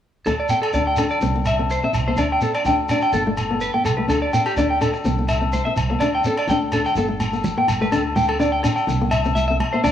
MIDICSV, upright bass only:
0, 0, Header, 1, 2, 480
1, 0, Start_track
1, 0, Tempo, 479233
1, 257, Time_signature, 4, 2, 24, 8
1, 9933, End_track
2, 0, Start_track
2, 0, Title_t, "Upright bass"
2, 0, Program_c, 0, 32
2, 257, Note_on_c, 0, 38, 72
2, 438, Note_off_c, 0, 38, 0
2, 734, Note_on_c, 0, 38, 85
2, 1096, Note_off_c, 0, 38, 0
2, 1210, Note_on_c, 0, 36, 75
2, 1753, Note_off_c, 0, 36, 0
2, 1931, Note_on_c, 0, 36, 74
2, 2113, Note_off_c, 0, 36, 0
2, 2167, Note_on_c, 0, 38, 74
2, 2351, Note_off_c, 0, 38, 0
2, 2649, Note_on_c, 0, 38, 88
2, 3013, Note_off_c, 0, 38, 0
2, 3130, Note_on_c, 0, 31, 78
2, 3674, Note_off_c, 0, 31, 0
2, 3844, Note_on_c, 0, 36, 68
2, 4029, Note_off_c, 0, 36, 0
2, 4082, Note_on_c, 0, 38, 74
2, 4268, Note_off_c, 0, 38, 0
2, 4570, Note_on_c, 0, 38, 91
2, 4934, Note_off_c, 0, 38, 0
2, 5053, Note_on_c, 0, 36, 81
2, 5596, Note_off_c, 0, 36, 0
2, 5772, Note_on_c, 0, 36, 71
2, 5955, Note_off_c, 0, 36, 0
2, 6003, Note_on_c, 0, 38, 77
2, 6189, Note_off_c, 0, 38, 0
2, 6487, Note_on_c, 0, 38, 97
2, 6853, Note_off_c, 0, 38, 0
2, 6964, Note_on_c, 0, 31, 81
2, 7511, Note_off_c, 0, 31, 0
2, 7688, Note_on_c, 0, 31, 72
2, 7873, Note_off_c, 0, 31, 0
2, 7934, Note_on_c, 0, 38, 77
2, 8656, Note_off_c, 0, 38, 0
2, 8885, Note_on_c, 0, 36, 90
2, 9610, Note_off_c, 0, 36, 0
2, 9851, Note_on_c, 0, 38, 83
2, 9933, Note_off_c, 0, 38, 0
2, 9933, End_track
0, 0, End_of_file